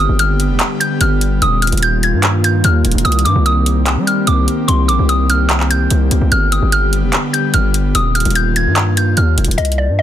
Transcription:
Already playing: D3 G3 B3 G4
0.00 D#6
0.09 G1
0.19 F6, closed hi-hat
0.40 closed hi-hat
0.50 F1
0.59 clap, closed hi-hat
0.80 G6, closed hi-hat
1.01 G1 F6, closed hi-hat
1.21 closed hi-hat
1.42 D#1 D#3 A#3 F4 D#6, closed hi-hat
1.62 F6, closed hi-hat
1.67 closed hi-hat
1.72 D#1, closed hi-hat
1.77 closed hi-hat
1.82 G6, closed hi-hat
2.03 G#6, closed hi-hat
2.13 G2
2.23 clap, closed hi-hat
2.44 G6, closed hi-hat
2.64 D#2 F6, closed hi-hat
2.85 D#1, closed hi-hat, open hi-hat
2.92 D#1, closed hi-hat
2.98 closed hi-hat
3.05 C2 C4 G4 D#6, closed hi-hat
3.12 closed hi-hat
3.19 closed hi-hat
3.25 G2 D6, closed hi-hat
3.36 C2
3.46 D#6, closed hi-hat
3.66 closed hi-hat
3.86 clap, closed hi-hat
3.97 G3
4.07 F6, closed hi-hat
4.27 C2 D6, closed hi-hat
4.48 closed hi-hat
4.68 C2 C6, closed hi-hat
4.88 A#1 D6, closed hi-hat
4.99 C2
5.09 D#6, closed hi-hat
5.30 F6, closed hi-hat
5.49 clap, closed hi-hat
5.60 clap
5.70 G6, closed hi-hat
5.90 C2, closed hi-hat
6.11 C2, closed hi-hat
6.21 C2
6.32 G1 D3 G3 B3 G4 F6, closed hi-hat
6.52 D#6, closed hi-hat
6.62 G1
6.72 F6, closed hi-hat
6.93 closed hi-hat
7.03 F1
7.13 clap, closed hi-hat
7.33 G6, closed hi-hat
7.54 G1 F6, closed hi-hat
7.74 closed hi-hat
7.95 D#1 D#3 A#3 F4 D#6, closed hi-hat
8.15 F6, closed hi-hat
8.20 closed hi-hat
8.25 D#1, closed hi-hat
8.30 closed hi-hat
8.35 G6, closed hi-hat
8.56 G#6, closed hi-hat
8.66 G2
8.76 clap, closed hi-hat
8.97 G6, closed hi-hat
9.17 D#2 F6, closed hi-hat
9.38 D#1, closed hi-hat, open hi-hat
9.45 D#1, closed hi-hat
9.51 closed hi-hat
9.58 C2 D#5, closed hi-hat
9.65 closed hi-hat
9.72 closed hi-hat
9.78 D5
9.89 G2
9.99 D#5

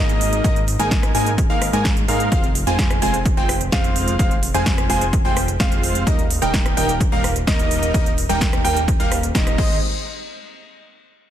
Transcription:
Already playing: G#1 G#3 A#3 D#4 A#4 D#5
0.09 closed hi-hat
0.21 open hi-hat
0.33 closed hi-hat
0.44 G#1 G#3 A#3 D#4 A#4 D#5, kick, closed hi-hat
0.56 closed hi-hat
0.68 open hi-hat
0.79 G#1 G#3 A#3 D#4 A#4 G#5, closed hi-hat
0.91 kick, snare, closed hi-hat
1.03 cross-stick, closed hi-hat
1.15 G#1 G#3 A#3 D#4 A#4 G#5, open hi-hat
1.26 closed hi-hat
1.38 kick, closed hi-hat
1.50 G#1 G#3 A#3 D#4 A#4 F5
1.62 cross-stick, open hi-hat
1.73 G#2 G#3 A#3 D#4 A#4 G#5, closed hi-hat
1.85 kick, snare, closed hi-hat
1.97 closed hi-hat
2.08 G#2 G#3 A#3 D#4 A#4 F5, open hi-hat
2.20 closed hi-hat
2.32 F1 G#3 C4 F4 C5 F5, kick, closed hi-hat
2.44 closed hi-hat
2.55 open hi-hat
2.67 F1 G#3 C4 F4 C5 G#5, closed hi-hat
2.79 kick, snare, closed hi-hat
2.90 cross-stick, closed hi-hat
3.02 F1 G#3 C4 F4 C5 G#5, open hi-hat
3.14 closed hi-hat
3.25 kick, closed hi-hat
3.37 F1 G#3 C4 F4 C5 G5
3.49 cross-stick, open hi-hat
3.61 closed hi-hat
3.72 G#3 C4 F4 C5 F5, kick, snare, closed hi-hat
3.84 closed hi-hat
3.96 open hi-hat
4.08 closed hi-hat
4.19 G#3 C4 F4 C5 F5, kick, closed hi-hat
4.31 closed hi-hat
4.43 open hi-hat
4.54 F1 G#3 C4 F4 C5 G#5, closed hi-hat
4.66 kick, snare, closed hi-hat
4.78 cross-stick, closed hi-hat
4.89 F1 G#3 C4 F4 C5 G#5, open hi-hat
5.01 closed hi-hat
5.13 kick, closed hi-hat
5.25 F1 G#3 C4 F4 C5 G5
5.37 cross-stick, open hi-hat
5.48 closed hi-hat
5.60 F1 G#3 C4 F4 C5 F5, kick, snare, closed hi-hat
5.72 closed hi-hat
5.83 open hi-hat
5.95 closed hi-hat
6.07 G3 A#3 D#4 A#4 D#5, kick, closed hi-hat
6.19 closed hi-hat
6.30 open hi-hat
6.42 D#1 G3 A#3 D#4 A#4 G5, closed hi-hat
6.54 kick, snare, closed hi-hat
6.66 cross-stick, closed hi-hat
6.77 D#1 G3 A#3 D#4 A#4 G5, open hi-hat
6.89 closed hi-hat
7.00 kick, closed hi-hat
7.12 D#1 G3 A#3 D#4 A#4 F5
7.24 cross-stick, open hi-hat
7.36 closed hi-hat
7.47 G3 A#3 D#4 A#4 D#5, kick, snare, closed hi-hat
7.59 closed hi-hat
7.71 open hi-hat
7.83 closed hi-hat
7.94 D#1 G3 A#3 D#4 A#4 D#5, kick, closed hi-hat
8.06 closed hi-hat
8.18 open hi-hat
8.29 D#1 G3 A#3 D#4 A#4 G5, closed hi-hat
8.41 kick, snare, closed hi-hat
8.53 cross-stick, closed hi-hat
8.64 D#1 G3 A#3 D#4 A#4 G5, open hi-hat
8.77 closed hi-hat
8.88 kick, closed hi-hat
9.00 D#1 G3 A#3 D#4 A#4 F5, closed hi-hat
9.12 cross-stick, open hi-hat
9.23 closed hi-hat
9.35 G3 A#3 D#4 A#4 D#5, kick, snare, closed hi-hat
9.47 cross-stick, closed hi-hat
9.58 G#1 G#3 C4 D#4 C5 D#5, kick, crash

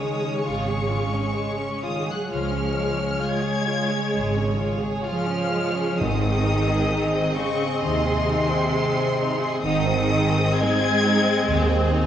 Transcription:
Already playing: C#3 G#3 C#4 G#4 C#5 G#5 D#6
0.00 D#3 G#3
0.14 G#4
0.23 C#4
0.42 G#1 C#3 G#3 C#6
0.46 F4
0.69 G#4
0.76 C#4
0.91 F4
1.08 G#4
1.14 C#4
1.36 G#3 G#5
1.59 C#4
1.71 C#5
1.83 D#3 F4 D#6
2.02 G#4
2.07 F#3 G#4
2.12 F#6
2.30 C#2 C#3 F3 G#3 F4 G#4 C#5
2.34 F6
2.53 C#4
2.65 C#4
2.77 G#3
2.95 C#4 G#4
3.22 G#3 F4 G#5 G#6
3.44 G#4
3.56 C#5
3.69 F4
3.87 C#4 G#4
4.15 G#1 G#3
4.37 C#4
4.47 C#4
4.59 F4
4.78 G#4
4.83 G#4
5.06 F3 F4 G#5 F6
5.29 C#4
5.41 C#5
5.52 G#3
5.74 C#4
5.97 G#1 G#2 D#3 G#3 C4 D#5 D#6
6.01 G#4
6.21 C4
6.32 G#3
6.43 D#4
6.61 G#4
6.70 G#4
6.92 D#4 D#5
7.15 C4
7.23 G#4
7.36 C#3 G#3 C#6
7.53 C4
7.61 C4
7.81 D#2 C3 D#3 D#4 C6
8.06 G#4
8.12 G#3
8.29 D#4
8.43 G#4
8.51 C4
8.74 G#3 C5
8.98 C4
9.05 G#4
9.21 D#4
9.34 C4
9.43 G#4
9.63 G#1 G#2 D#3 C4 D#4 G#4 D#5 D#6
9.86 C4
9.96 G#3
10.12 G#3
10.28 G#4
10.37 C4
10.58 G#3 D#4 C5 G#6
10.84 G#4
10.90 G#4
11.06 D#4
11.20 C4
11.25 C4
11.48 D#2 D#3 G#3
11.69 C4
11.79 G#3
11.93 D#4

